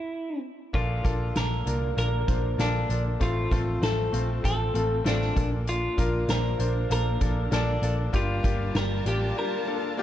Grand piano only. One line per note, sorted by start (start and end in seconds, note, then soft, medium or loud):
0.73 1.63 A#2 medium
0.73 0.98 A#3 medium
0.73 0.98 D4 medium
0.73 0.99 F4 medium
0.73 0.99 A4 medium
1.04 1.29 A#3 medium
1.04 1.29 D4 medium
1.04 1.29 F4 medium
1.04 1.30 A4 medium
1.34 1.59 A#3 medium
1.34 1.60 D4 medium
1.34 1.60 F4 soft
1.34 1.60 A4 medium
1.66 1.91 A#3 medium
1.66 1.91 D4 medium
1.66 1.91 F4 medium
1.66 1.91 A#4 medium
1.96 2.21 A#3 medium
1.96 2.22 D4 medium
1.96 2.22 F4 medium
1.96 2.22 A#4 medium
2.27 2.52 A#3 medium
2.27 2.52 D4 medium
2.27 2.53 F4 medium
2.27 2.53 C5 medium
2.58 2.83 A#3 medium
2.58 2.83 D4 medium
2.58 2.84 F4 medium
2.58 2.84 A4 medium
2.89 3.14 A#3 medium
2.89 3.14 D4 medium
2.89 3.14 F4 medium
2.89 3.15 A4 medium
3.20 4.09 A2 medium
3.20 3.45 A3 medium
3.20 3.45 C4 medium
3.20 3.45 F4 medium
3.20 3.46 A4 medium
3.51 3.75 A3 medium
3.51 3.76 C4 medium
3.51 3.76 F4 medium
3.51 3.76 A4 medium
3.82 4.06 A3 medium
3.82 4.07 C4 medium
3.82 4.07 F4 medium
3.82 4.07 A4 medium
4.12 4.37 A3 medium
4.12 4.37 C4 medium
4.12 4.38 F4 medium
4.12 4.38 C5 medium
4.43 4.68 A3 medium
4.43 4.68 C4 medium
4.43 4.69 F4 medium
4.43 4.69 A4 medium
4.74 4.99 A3 medium
4.74 4.99 C4 medium
4.74 4.99 F4 medium
4.74 5.00 A4 medium
5.04 5.29 A3 medium
5.04 5.30 C4 medium
5.04 5.30 F4 medium
5.04 5.30 A4 medium
5.35 6.25 A#2 medium
5.35 5.85 A#3 medium
5.35 5.85 D4 medium
5.35 5.86 F4 medium
5.35 5.86 A4 medium
5.97 6.22 A#3 medium
5.97 6.22 D4 medium
5.97 6.22 F4 medium
5.97 6.23 A#4 loud
6.28 6.53 A#3 medium
6.28 6.53 D4 medium
6.28 6.53 F4 medium
6.28 6.54 C5 medium
6.58 6.83 A#3 medium
6.58 6.84 D4 medium
6.58 6.84 F4 medium
6.58 6.84 C5 medium
6.89 7.14 A#3 medium
6.89 7.14 D4 medium
6.89 7.15 F4 medium
6.89 7.15 A4 medium
7.20 7.45 A#3 medium
7.20 7.45 D4 medium
7.20 7.46 F4 medium
7.20 7.46 A4 medium
7.51 7.76 A#3 medium
7.51 7.76 D4 medium
7.51 7.76 F4 medium
7.51 7.77 A4 loud
7.82 8.07 A#3 medium
7.82 8.07 D4 medium
7.82 8.07 F4 medium
7.82 8.07 A4 medium
8.13 9.02 G2 medium
8.13 8.37 A#3 medium
8.13 8.38 D4 medium
8.13 8.38 F4 medium
8.13 8.38 G4 loud
8.43 8.68 A#3 medium
8.43 8.68 D4 medium
8.43 8.69 F4 medium
8.43 8.69 G4 loud
8.74 8.99 A#3 medium
8.74 8.99 D4 medium
8.74 9.00 F4 medium
8.74 9.00 G4 medium
9.05 9.30 A#3 medium
9.05 9.30 D4 medium
9.05 9.30 F4 medium
9.05 9.31 G4 medium
9.36 9.60 A#3 medium
9.36 9.61 D4 medium
9.36 9.61 F4 medium
9.36 9.61 G4 medium
9.67 9.91 A#3 medium
9.67 9.92 D4 medium
9.67 9.92 F4 medium
9.67 9.92 A4 medium
9.97 10.03 A#3 medium
9.97 10.03 D4 medium
9.97 10.03 F4 medium
9.97 10.03 G4 loud